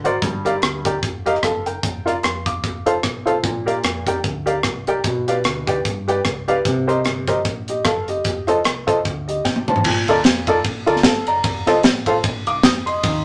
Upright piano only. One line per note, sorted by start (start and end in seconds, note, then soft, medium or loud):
0.04 0.14 F#4 medium
0.04 0.15 A#4 medium
0.04 0.15 C5 medium
0.04 0.15 D5 medium
0.22 0.81 G2 medium
0.45 0.55 G4 medium
0.45 0.55 A#4 medium
0.45 0.55 D5 medium
0.45 0.55 F5 medium
0.85 0.95 G4 medium
0.85 0.95 A#4 medium
0.85 0.95 D5 medium
0.85 0.95 G5 medium
1.26 1.35 G4 medium
1.26 1.35 A#4 medium
1.26 1.35 D#5 medium
1.26 1.36 F5 medium
1.44 1.66 A4 medium
1.44 1.65 F5 medium
1.66 2.04 A#4 soft
1.66 2.04 G5 medium
2.06 2.15 F4 medium
2.06 2.16 A#4 medium
2.06 2.16 D5 medium
2.06 2.16 F5 medium
2.23 2.45 C6 medium
2.46 2.85 F5 soft
2.46 2.84 D6 medium
2.86 2.96 F4 medium
2.86 2.96 A4 medium
2.86 2.96 C5 medium
2.86 2.96 F5 medium
3.26 3.36 F4 medium
3.26 3.36 A4 medium
3.26 3.36 C5 medium
3.26 3.37 F5 medium
3.43 4.03 A#2 medium
3.66 3.76 G4 medium
3.66 3.76 A#4 medium
3.66 3.76 D5 medium
3.66 3.77 F5 medium
4.07 4.17 G4 medium
4.07 4.17 A#4 medium
4.07 4.17 D5 medium
4.07 4.17 G5 medium
4.46 4.56 G4 medium
4.46 4.56 A#4 medium
4.46 4.56 D5 medium
4.46 4.57 F5 medium
4.88 4.97 G4 medium
4.88 4.97 A#4 medium
4.88 4.97 D5 medium
4.88 4.98 G5 medium
5.05 5.64 B2 medium
5.28 5.37 G4 medium
5.28 5.37 B4 medium
5.28 5.38 D5 medium
5.28 5.38 F5 medium
5.67 5.77 G4 medium
5.67 5.77 B4 medium
5.67 5.78 D5 medium
5.67 5.78 G5 medium
6.08 6.17 G4 medium
6.08 6.17 B4 medium
6.08 6.18 D5 medium
6.08 6.18 G5 medium
6.48 6.57 G4 medium
6.48 6.58 B4 medium
6.48 6.58 D5 medium
6.48 6.58 F5 medium
6.65 7.24 C3 medium
6.87 6.97 G4 medium
6.87 6.97 A#4 medium
6.87 6.97 C5 medium
6.87 6.98 D#5 medium
7.28 7.37 G4 medium
7.28 7.38 A#4 medium
7.28 7.38 C5 medium
7.28 7.38 D#5 medium
7.69 7.85 G4 soft
7.69 7.85 D#5 medium
7.85 8.07 A4 medium
7.85 8.07 F5 medium
8.08 8.46 G4 soft
8.08 8.46 D#5 medium
8.47 8.57 F4 medium
8.47 8.58 A4 medium
8.47 8.58 C5 medium
8.47 8.58 D#5 medium
8.87 8.97 F4 medium
8.87 8.97 A4 medium
8.87 8.98 C5 medium
8.87 8.97 D#5 medium
9.28 9.44 G4 soft
9.28 9.44 D#5 medium
9.45 9.67 G5 medium
9.69 10.07 C5 soft
9.69 10.06 A5 medium
9.86 10.44 A#2 medium
10.09 10.18 F4 medium
10.09 10.18 A4 medium
10.09 10.18 A#4 medium
10.09 10.19 D5 medium
10.48 10.57 F4 medium
10.48 10.58 A4 medium
10.48 10.58 A#4 medium
10.48 10.58 D5 medium
10.86 10.97 F4 medium
10.86 10.97 A4 medium
10.86 10.97 A#4 medium
10.86 10.97 D5 medium
11.05 11.27 A4 medium
11.05 11.27 F5 medium
11.28 11.66 D5 medium
11.28 11.65 A#5 medium
11.67 11.77 F4 medium
11.67 11.77 A4 medium
11.67 11.77 C5 medium
11.67 11.77 D#5 medium
12.07 12.17 F4 medium
12.07 12.17 A4 medium
12.07 12.17 C5 medium
12.07 12.17 F5 medium
12.47 12.63 F5 soft
12.47 12.63 D6 medium
12.64 12.86 G5 medium
12.64 12.86 D#6 medium
12.86 13.25 D#5 medium
12.86 13.25 C6 medium
13.03 13.25 D#3 medium